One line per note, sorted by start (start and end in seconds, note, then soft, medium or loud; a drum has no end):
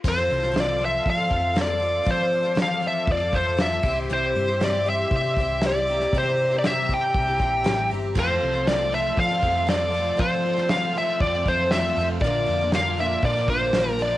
0.04 0.27 F2 loud
0.04 0.17 F3 medium
0.04 0.17 C4 medium
0.04 0.15 F4 medium
0.04 0.14 A4 loud
0.04 3.83 A4 medium
0.04 3.82 F5 medium
0.04 kick loud
0.04 crash loud
0.08 0.59 C5 medium
0.08 2.07 C6 medium
0.15 0.42 C4 soft
0.15 0.41 F4 soft
0.15 0.39 A4 medium
0.30 0.99 C2 loud
0.30 open hi-hat medium
0.40 0.52 C4 medium
0.40 0.52 F4 medium
0.40 0.53 A4 medium
0.40 snare soft
0.52 0.77 F3 medium
0.52 0.78 C4 medium
0.52 0.78 F4 medium
0.52 0.80 A4 medium
0.56 snare loud
0.56 open hi-hat medium
0.60 0.84 D5 medium
0.78 1.18 F3 medium
0.78 1.17 C4 medium
0.78 1.16 F4 medium
0.78 1.15 A4 medium
0.78 open hi-hat medium
0.85 1.09 E5 medium
1.06 1.29 F3 medium
1.06 kick loud
1.06 open hi-hat medium
1.10 1.55 F5 loud
1.16 1.27 C4 soft
1.16 1.29 F4 medium
1.16 1.29 A4 medium
1.27 1.99 F2 loud
1.27 1.52 F3 medium
1.27 1.54 C4 medium
1.27 1.55 F4 medium
1.27 1.54 A4 medium
1.27 kick medium
1.27 open hi-hat medium
1.53 1.68 F3 medium
1.53 1.68 C4 medium
1.53 1.66 F4 medium
1.53 1.65 A4 loud
1.53 snare loud
1.53 open hi-hat medium
1.62 2.11 D5 medium
1.66 1.78 C4 soft
1.66 1.81 F4 soft
1.66 1.81 A4 medium
1.80 2.02 F3 medium
1.80 2.04 C4 medium
1.80 2.05 F4 medium
1.80 2.05 A4 medium
1.80 open hi-hat medium
2.04 2.44 F3 medium
2.04 3.09 F3 medium
2.04 2.45 C4 medium
2.04 2.44 F4 loud
2.04 2.42 A4 medium
2.04 kick loud
2.04 open hi-hat medium
2.08 2.56 C5 medium
2.08 3.84 D6 medium
2.32 open hi-hat medium
2.43 2.55 C4 soft
2.43 2.55 F4 medium
2.43 2.56 A4 medium
2.55 2.79 F3 medium
2.55 2.80 C4 medium
2.55 2.81 F4 medium
2.55 2.82 A4 medium
2.55 snare loud
2.55 open hi-hat medium
2.62 2.84 F5 medium
2.80 3.20 F3 medium
2.80 3.20 C4 medium
2.80 3.19 F4 medium
2.80 3.17 A4 medium
2.80 open hi-hat medium
2.87 3.12 E5 medium
3.08 3.31 F2 medium
3.08 kick loud
3.08 open hi-hat medium
3.12 3.37 D5 medium
3.18 3.32 C4 soft
3.18 3.32 F4 medium
3.18 3.33 A4 medium
3.32 3.79 F2 loud
3.32 3.56 F3 medium
3.32 3.57 C4 medium
3.32 3.58 F4 medium
3.32 3.58 A4 medium
3.32 3.61 C5 medium
3.32 kick loud
3.32 open hi-hat medium
3.57 3.71 F3 medium
3.57 3.72 C4 medium
3.57 3.72 F4 medium
3.57 3.71 A4 medium
3.57 snare loud
3.57 open hi-hat medium
3.62 3.96 E5 loud
3.72 3.83 C4 soft
3.72 3.85 F4 medium
3.72 3.85 A4 medium
3.83 4.07 C2 loud
3.83 4.08 G3 medium
3.83 4.09 C4 medium
3.83 4.10 E4 medium
3.83 8.13 G4 medium
3.83 4.11 G4 medium
3.83 5.86 C6 medium
3.83 kick loud
3.83 crash loud
3.87 8.13 E5 medium
4.09 4.33 C2 loud
4.09 4.48 C3 medium
4.09 4.48 G3 medium
4.09 4.49 C4 medium
4.09 4.49 E4 medium
4.09 4.48 G4 loud
4.09 4.64 C5 medium
4.35 5.04 G2 loud
4.35 open hi-hat medium
4.49 4.61 E4 medium
4.49 4.61 G4 medium
4.53 4.61 C4 medium
4.60 4.74 C3 medium
4.60 4.74 G3 medium
4.60 4.74 C4 medium
4.60 4.74 E4 medium
4.60 4.71 G4 medium
4.60 4.89 D5 loud
4.60 snare loud
4.60 open hi-hat medium
4.72 4.85 C4 soft
4.72 4.86 E4 medium
4.72 4.86 G4 medium
4.85 5.24 G3 medium
4.85 5.24 C4 medium
4.85 5.24 E4 medium
4.85 5.22 G4 medium
4.85 open hi-hat medium
4.89 5.14 E5 medium
5.11 5.34 C3 medium
5.11 kick loud
5.11 open hi-hat medium
5.16 5.66 E5 loud
5.24 5.39 C4 soft
5.24 5.37 E4 soft
5.24 5.37 G4 medium
5.36 6.05 C2 loud
5.36 5.62 G3 medium
5.36 5.63 C4 medium
5.36 5.62 E4 medium
5.36 kick medium
5.36 open hi-hat medium
5.41 5.64 G4 medium
5.61 5.75 C3 medium
5.61 5.75 G3 medium
5.61 5.76 C4 medium
5.61 5.74 E4 medium
5.61 5.73 G4 medium
5.61 snare loud
5.61 open hi-hat medium
5.67 6.17 D5 loud
5.74 5.88 C4 soft
5.74 5.88 E4 medium
5.74 5.88 G4 medium
5.87 6.13 G3 medium
5.87 6.13 C4 medium
5.87 6.14 E4 medium
5.87 8.15 A#5 medium
5.87 open hi-hat medium
5.91 6.15 G4 medium
6.00 snare soft
6.13 7.17 C3 medium
6.13 6.27 C3 medium
6.13 6.27 G3 medium
6.13 6.27 C4 medium
6.13 6.27 E4 medium
6.13 6.26 G4 loud
6.13 kick loud
6.13 open hi-hat medium
6.18 6.55 C5 loud
6.27 6.53 C4 soft
6.27 6.52 E4 soft
6.27 6.50 G4 medium
6.37 open hi-hat medium
6.51 6.63 C4 soft
6.51 6.64 E4 medium
6.51 6.64 G4 medium
6.59 6.67 D5 medium
6.64 6.89 C3 medium
6.64 6.88 G3 medium
6.64 6.90 C4 medium
6.64 6.90 E4 medium
6.64 6.90 G4 medium
6.64 6.91 E5 loud
6.64 snare loud
6.64 open hi-hat medium
6.88 7.28 G3 medium
6.88 7.28 C4 medium
6.88 7.28 E4 medium
6.88 7.26 G4 medium
6.88 kick medium
6.88 open hi-hat medium
6.94 7.89 G5 loud
7.14 7.38 C2 medium
7.14 kick loud
7.14 open hi-hat medium
7.27 7.39 C4 soft
7.27 7.40 E4 medium
7.27 7.40 G4 medium
7.39 7.63 A#1 medium
7.39 7.63 G3 medium
7.39 7.64 C4 medium
7.39 7.64 E4 medium
7.39 7.65 G4 medium
7.39 kick medium
7.39 open hi-hat medium
7.64 7.89 A1 medium
7.64 7.78 C3 medium
7.64 7.78 G3 medium
7.64 7.78 C4 loud
7.64 7.78 E4 medium
7.64 7.75 G4 loud
7.64 snare loud
7.64 open hi-hat medium
7.76 7.91 C4 medium
7.76 7.91 E4 medium
7.76 7.90 G4 medium
7.90 8.15 G1 medium
7.90 8.16 G3 medium
7.90 8.15 C4 medium
7.90 8.17 E4 medium
7.90 open hi-hat medium
7.94 8.18 G4 medium
8.15 8.38 F2 loud
8.15 8.66 F3 loud
8.15 8.29 F3 medium
8.15 8.44 A3 loud
8.15 8.29 C4 medium
8.15 8.42 C4 loud
8.15 14.18 F4 medium
8.15 8.29 F4 medium
8.15 8.40 F4 loud
8.15 12.18 A4 medium
8.15 12.18 C6 medium
8.15 kick loud
8.15 crash loud
8.19 8.27 A4 medium
8.19 8.65 C5 loud
8.29 8.56 C4 soft
8.29 8.55 F4 soft
8.29 8.52 A4 medium
8.40 9.10 C2 loud
8.40 8.68 C4 medium
8.40 8.70 F4 medium
8.40 open hi-hat medium
8.44 8.67 A3 medium
8.53 8.67 F4 medium
8.53 8.66 A4 medium
8.57 8.67 C4 soft
8.66 8.92 F3 medium
8.66 8.80 F3 medium
8.66 8.92 A3 medium
8.66 8.80 C4 medium
8.66 8.91 C4 medium
8.66 8.79 F4 medium
8.66 8.77 A4 medium
8.66 8.91 D5 medium
8.66 snare loud
8.66 open hi-hat medium
8.70 8.89 F4 medium
8.79 8.91 C4 soft
8.79 8.92 F4 medium
8.79 8.92 A4 medium
8.90 9.30 F3 medium
8.90 9.14 F3 medium
8.90 9.15 A3 medium
8.90 9.16 C4 medium
8.90 9.30 C4 medium
8.90 9.18 F4 medium
8.90 open hi-hat medium
8.94 9.28 F4 medium
8.94 9.27 A4 medium
8.94 9.17 E5 loud
9.15 9.43 F3 medium
9.15 9.40 F3 loud
9.15 9.42 A3 medium
9.15 9.41 C4 medium
9.15 kick loud
9.15 open hi-hat medium
9.19 9.40 F4 medium
9.19 9.66 F5 loud
9.28 9.40 C4 medium
9.28 9.42 F4 soft
9.28 9.42 A4 medium
9.40 10.11 F2 loud
9.40 9.65 F3 medium
9.40 9.66 F3 medium
9.40 9.67 A3 medium
9.40 9.67 C4 medium
9.40 9.68 C4 medium
9.40 9.69 F4 loud
9.40 9.67 F4 medium
9.40 9.68 A4 medium
9.40 kick medium
9.40 open hi-hat medium
9.67 9.80 F3 medium
9.67 10.18 F3 medium
9.67 9.97 A3 medium
9.67 9.80 C4 medium
9.67 9.94 C4 medium
9.67 9.78 F4 medium
9.67 9.93 F4 medium
9.67 9.77 A4 loud
9.67 10.21 D5 loud
9.67 snare loud
9.67 open hi-hat medium
9.79 9.91 C4 medium
9.79 9.91 F4 medium
9.79 9.92 A4 medium
9.90 10.16 F3 medium
9.90 10.17 C4 medium
9.90 10.18 F4 medium
9.90 10.22 F4 medium
9.90 open hi-hat medium
9.94 10.19 A3 medium
9.94 10.21 C4 medium
9.94 10.19 A4 medium
10.17 10.56 F3 medium
10.17 10.69 F3 loud
10.17 11.22 F3 loud
10.17 10.47 A3 loud
10.17 10.57 C4 loud
10.17 10.57 F4 loud
10.17 10.55 A4 medium
10.17 10.72 C5 medium
10.17 kick loud
10.17 open hi-hat medium
10.22 10.46 C4 loud
10.22 10.44 F4 loud
10.45 10.69 A3 medium
10.45 10.70 C4 medium
10.45 10.72 F4 medium
10.45 open hi-hat medium
10.56 10.68 C4 soft
10.56 10.69 F4 soft
10.56 10.69 A4 medium
10.56 snare soft
10.68 10.94 F3 medium
10.68 10.99 F3 medium
10.68 10.97 A3 medium
10.68 10.95 C4 medium
10.68 10.96 C4 medium
10.68 10.95 F4 medium
10.68 10.95 A4 medium
10.68 10.93 F5 loud
10.68 snare loud
10.68 open hi-hat medium
10.73 10.95 F4 medium
10.95 11.33 F3 medium
10.95 11.20 A3 medium
10.95 11.34 C4 medium
10.95 11.21 C4 medium
10.95 11.23 F4 medium
10.95 11.34 F4 medium
10.95 11.33 A4 medium
10.95 11.21 E5 loud
10.95 open hi-hat medium
10.99 11.19 F3 medium
11.20 11.43 F2 loud
11.20 11.49 F3 medium
11.20 11.47 A3 medium
11.20 11.46 C4 medium
11.20 11.45 F4 medium
11.20 11.47 D5 loud
11.20 kick loud
11.20 open hi-hat medium
11.35 11.47 C4 soft
11.35 11.47 F4 medium
11.35 11.46 A4 medium
11.45 11.91 F2 loud
11.45 11.72 F3 medium
11.45 11.70 A3 medium
11.45 11.71 C4 medium
11.45 11.72 C4 medium
11.45 11.73 F4 medium
11.45 11.72 F4 medium
11.45 11.73 C5 medium
11.45 kick loud
11.45 open hi-hat medium
11.49 11.70 F3 medium
11.49 11.73 A4 medium
11.70 12.22 F3 medium
11.70 11.85 F3 medium
11.70 11.99 A3 medium
11.70 11.97 C4 medium
11.70 11.96 F4 medium
11.70 12.06 E5 loud
11.70 snare loud
11.70 open hi-hat medium
11.75 11.85 C4 medium
11.75 11.86 F4 loud
11.75 11.84 A4 loud
11.85 11.99 C4 soft
11.85 11.98 F4 medium
11.85 11.97 A4 medium
11.95 12.19 F2 loud
11.95 12.21 C4 medium
11.95 12.24 F4 medium
11.95 open hi-hat medium
11.99 12.23 F3 medium
11.99 12.22 A3 medium
11.99 12.23 C4 medium
11.99 12.24 F4 medium
11.99 12.24 A4 medium
12.20 12.44 A#1 loud
12.20 12.72 A#2 loud
12.20 12.72 D3 loud
12.20 12.49 A#3 loud
12.20 14.18 A#4 medium
12.20 12.69 D5 medium
12.20 14.18 D6 medium
12.20 kick loud
12.20 open hi-hat medium
12.24 12.61 A#2 medium
12.24 12.61 D3 medium
12.24 12.62 F3 loud
12.24 12.62 A#3 medium
12.24 12.48 D4 loud
12.24 12.61 D4 medium
12.24 12.47 F4 loud
12.24 12.60 A#4 medium
12.46 13.16 F2 loud
12.46 12.75 D4 medium
12.46 12.76 F4 medium
12.46 open hi-hat medium
12.50 12.73 A#3 medium
12.61 12.73 F3 soft
12.61 12.74 A#3 medium
12.61 12.74 D4 medium
12.61 12.73 A#4 medium
12.72 12.99 A#2 medium
12.72 13.01 D3 medium
12.72 12.99 D3 medium
12.72 12.96 F3 medium
12.72 13.01 A#3 medium
12.72 12.97 A#3 loud
12.72 12.98 D4 medium
12.72 13.00 F5 medium
12.72 snare loud
12.72 open hi-hat medium
12.76 12.99 D4 medium
12.76 12.99 F4 medium
12.76 12.99 A#4 medium
12.97 13.36 F3 medium
12.97 13.36 A#3 medium
12.97 13.36 D4 medium
12.97 13.25 D4 medium
12.97 13.26 F4 medium
12.97 13.35 A#4 medium
12.97 13.25 E5 medium
12.97 open hi-hat medium
13.02 13.51 A#2 medium
13.02 13.23 D3 medium
13.02 13.25 A#3 medium
13.22 13.46 A#2 loud
13.22 13.51 D3 medium
13.22 13.50 A#3 medium
13.22 13.49 D4 medium
13.22 13.48 D5 medium
13.22 kick loud
13.22 open hi-hat medium
13.27 13.49 F4 medium
13.36 13.47 F3 medium
13.36 13.49 A#3 medium
13.36 13.49 D4 medium
13.36 13.49 A#4 medium
13.48 14.16 A#1 loud
13.48 13.74 F3 medium
13.48 13.74 A#3 medium
13.48 13.75 A#3 medium
13.48 13.76 D4 medium
13.48 13.75 D4 medium
13.48 13.78 F4 medium
13.48 13.75 A#4 medium
13.48 14.01 C5 medium
13.48 kick loud
13.48 open hi-hat medium
13.52 14.01 A#2 medium
13.52 13.74 D3 medium
13.73 13.87 A#2 medium
13.73 14.18 D3 medium
13.73 13.87 D3 medium
13.73 13.87 F3 medium
13.73 13.87 A#3 medium
13.73 13.88 D4 medium
13.73 13.87 A#4 medium
13.73 snare loud
13.73 open hi-hat medium
13.77 14.03 A#3 medium
13.77 14.02 D4 medium
13.77 14.01 F4 medium
13.88 13.97 F3 medium
13.88 13.98 A#3 medium
13.88 14.00 D4 medium
13.88 14.00 A#4 medium
13.99 14.18 F3 medium
13.99 14.18 A#3 medium
13.99 14.18 D4 medium
13.99 14.18 F4 medium
13.99 14.18 A#4 medium
13.99 14.18 D5 medium
13.99 open hi-hat medium
14.03 14.18 A#3 medium
14.03 14.18 D4 medium